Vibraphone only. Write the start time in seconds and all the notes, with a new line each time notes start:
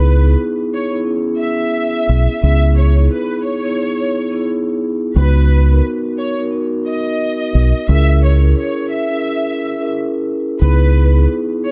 Already playing: B3 D#4 E4 G#4
0.23 B3 D#4 E4 G#4
0.91 B3 D#4 E4 G#4
1.05 B3 C#4 E4 G#4
2.42 B3 C#4 E4 G#4
2.97 B3 D#4 E4 G#4
3.64 B3 D#4 E4 G#4
4.31 B3 D#4 E4 G#4
5.16 B3 D#4 F#4 B4
5.70 B3 D#4 F#4 A#4
6.38 B3 D#4 F#4 A#4
6.51 B3 D#4 F#4 A#4
7.88 C#4 E4 G#4 A#4
8.41 C#4 E4 G#4 A#4
9.09 C#4 E4 G#4 A#4
9.78 C#4 E4 G#4 A#4
10.60 B3 D#4 E4 G#4
11.13 B3 D#4 E4 G#4